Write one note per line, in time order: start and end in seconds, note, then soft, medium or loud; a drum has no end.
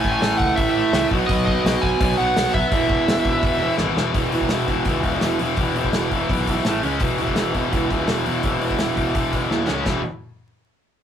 0.00 0.75 A2 medium
0.00 0.75 E3 medium
0.00 0.74 A3 medium
0.00 0.11 G#5 medium
0.00 kick loud
0.04 0.16 A1 loud
0.12 0.37 G#5 loud
0.21 0.32 A1 loud
0.21 snare loud
0.21 open hi-hat medium
0.38 0.51 C#2 medium
0.38 0.56 F#5 medium
0.38 kick medium
0.56 0.80 A1 medium
0.56 1.07 E5 medium
0.56 kick loud
0.56 open hi-hat medium
0.75 0.92 A2 medium
0.75 0.93 E3 medium
0.75 0.92 A3 medium
0.93 1.04 C#2 loud
0.93 1.10 A2 medium
0.93 1.11 E3 medium
0.93 1.11 A3 loud
0.93 snare loud
0.93 open hi-hat medium
1.10 1.23 B1 medium
1.10 1.99 B2 medium
1.10 2.00 F#3 loud
1.10 2.01 B3 loud
1.10 kick loud
1.27 1.52 B1 loud
1.27 1.44 D#5 medium
1.27 kick loud
1.27 open hi-hat medium
1.46 1.83 D#5 medium
1.46 kick loud
1.64 1.76 B1 loud
1.64 snare loud
1.64 open hi-hat medium
1.82 1.94 B1 medium
1.82 2.17 G#5 loud
1.82 kick medium
2.00 2.12 B1 loud
2.00 2.17 B2 medium
2.00 2.17 F#3 medium
2.00 2.17 B3 medium
2.00 kick loud
2.00 open hi-hat medium
2.18 2.29 B1 medium
2.18 2.54 B2 medium
2.18 2.53 F#3 medium
2.18 5.68 B3 medium
2.18 2.51 F#5 loud
2.36 2.48 B1 loud
2.36 snare loud
2.36 open hi-hat medium
2.54 2.65 B1 loud
2.54 3.75 E5 medium
2.54 kick medium
2.71 2.83 E1 loud
2.71 3.59 E2 medium
2.71 3.60 B2 loud
2.71 3.60 E3 medium
2.71 kick loud
2.71 open hi-hat medium
2.89 3.01 E1 loud
2.89 kick loud
3.08 3.19 E1 loud
3.08 snare loud
3.08 open hi-hat medium
3.25 3.36 G#1 medium
3.25 kick medium
3.43 3.65 E1 loud
3.43 kick loud
3.43 open hi-hat medium
3.61 3.78 E2 medium
3.61 3.78 B2 medium
3.61 3.78 E3 medium
3.78 3.90 G#1 medium
3.78 4.13 E2 medium
3.78 4.14 B2 medium
3.78 4.14 E3 medium
3.78 snare medium
3.96 4.14 E1 loud
3.96 snare loud
4.14 4.30 E1 medium
4.14 4.32 E2 medium
4.14 4.31 B2 medium
4.14 4.32 E3 loud
4.14 kick loud
4.14 open hi-hat medium
4.32 4.47 E1 medium
4.32 4.48 E2 medium
4.32 4.49 B2 loud
4.32 4.50 E3 medium
4.32 open hi-hat medium
4.41 kick medium
4.49 4.66 E1 medium
4.49 4.67 E2 medium
4.49 4.68 B2 medium
4.49 4.68 E3 medium
4.49 snare loud
4.49 open hi-hat medium
4.68 4.83 E1 medium
4.68 4.86 E2 medium
4.68 4.86 B2 medium
4.68 4.87 E3 medium
4.68 kick medium
4.68 open hi-hat soft
4.85 5.16 C#2 medium
4.85 5.03 E2 medium
4.85 5.03 B2 medium
4.85 5.04 E3 loud
4.85 kick loud
4.85 open hi-hat medium
5.03 5.21 E2 medium
5.03 5.22 B2 medium
5.03 5.22 E3 medium
5.03 kick medium
5.03 open hi-hat medium
5.21 5.37 E1 medium
5.21 5.40 E2 loud
5.21 5.40 B2 medium
5.21 5.41 E3 loud
5.21 snare loud
5.21 open hi-hat medium
5.39 5.55 E1 medium
5.39 5.57 E2 medium
5.39 5.58 B2 medium
5.39 5.58 E3 medium
5.39 open hi-hat medium
5.57 5.87 E1 loud
5.57 5.76 E2 medium
5.57 5.75 B2 medium
5.57 5.76 E3 medium
5.57 kick loud
5.57 open hi-hat medium
5.76 5.94 E2 medium
5.76 5.95 B2 medium
5.76 5.94 E3 medium
5.76 open hi-hat medium
5.84 kick medium
5.93 6.23 E1 medium
5.93 6.11 E2 medium
5.93 6.12 B2 medium
5.93 6.12 E3 medium
5.93 snare loud
5.93 open hi-hat medium
6.11 6.29 E2 medium
6.11 6.30 B2 medium
6.11 6.31 E3 medium
6.11 kick medium
6.11 open hi-hat medium
6.29 6.60 B1 medium
6.29 6.47 E2 medium
6.29 6.48 B2 medium
6.29 6.49 E3 medium
6.29 kick loud
6.29 open hi-hat medium
6.47 6.64 E2 medium
6.47 6.65 B2 medium
6.47 6.65 E3 medium
6.47 kick medium
6.47 open hi-hat medium
6.65 6.80 A1 loud
6.65 6.82 A2 loud
6.65 6.82 E3 loud
6.65 6.82 A3 loud
6.65 snare loud
6.65 open hi-hat medium
6.83 6.98 C#2 medium
6.83 6.99 C#3 medium
6.83 7.01 G#3 loud
6.83 7.00 C#4 loud
6.83 open hi-hat medium
7.00 7.16 E1 medium
7.00 7.20 E2 medium
7.00 7.20 B2 medium
7.00 7.21 E3 medium
7.00 kick loud
7.00 open hi-hat medium
7.18 7.35 E1 medium
7.18 7.38 E2 medium
7.18 7.38 B2 medium
7.18 7.39 E3 medium
7.18 open hi-hat medium
7.27 kick medium
7.36 7.52 E1 loud
7.36 7.55 E2 medium
7.36 7.55 B2 medium
7.36 7.56 E3 medium
7.36 snare loud
7.36 open hi-hat medium
7.54 7.69 E1 medium
7.54 7.72 E2 medium
7.54 7.72 B2 medium
7.54 7.72 E3 medium
7.54 kick medium
7.54 open hi-hat medium
7.72 8.03 C#2 medium
7.72 7.90 E2 medium
7.72 7.90 B2 medium
7.72 7.90 E3 loud
7.72 kick loud
7.72 open hi-hat medium
7.91 8.08 E2 medium
7.91 8.09 B2 medium
7.91 8.09 E3 medium
7.91 kick medium
7.91 open hi-hat soft
8.08 8.23 E1 medium
8.08 8.26 E2 medium
8.08 8.27 B2 medium
8.08 8.27 E3 medium
8.08 snare loud
8.08 open hi-hat medium
8.26 8.41 E1 medium
8.26 8.45 E2 medium
8.26 8.45 B2 medium
8.26 8.45 E3 medium
8.26 open hi-hat medium
8.43 8.74 E1 medium
8.43 8.61 E2 loud
8.43 8.62 B2 medium
8.43 8.62 E3 medium
8.43 kick loud
8.43 open hi-hat medium
8.61 8.78 E2 medium
8.61 8.78 B2 medium
8.61 8.79 E3 medium
8.61 open hi-hat medium
8.70 kick medium
8.79 9.10 E1 medium
8.79 8.95 E2 loud
8.79 8.96 B2 medium
8.79 8.96 E3 loud
8.79 snare loud
8.79 open hi-hat medium
8.96 9.14 E2 medium
8.96 9.14 B2 medium
8.96 9.15 E3 medium
8.96 kick medium
8.96 open hi-hat medium
9.15 9.46 E1 medium
9.15 9.31 E2 medium
9.15 9.31 B2 medium
9.15 9.31 E3 loud
9.15 kick loud
9.15 open hi-hat medium
9.32 9.48 E2 medium
9.32 9.48 B2 medium
9.32 9.49 E3 medium
9.32 kick medium
9.32 open hi-hat soft
9.49 9.65 D#2 medium
9.49 9.67 E2 medium
9.49 9.65 B2 medium
9.49 9.66 E3 loud
9.49 snare medium
9.66 9.84 C#2 medium
9.66 9.84 C#3 medium
9.66 9.84 G#3 medium
9.66 9.84 C#4 medium
9.66 snare medium
9.84 10.03 E1 medium
9.84 9.99 E2 medium
9.84 10.00 B2 medium
9.84 10.00 E3 loud
9.84 kick medium
9.84 snare medium
9.84 splash medium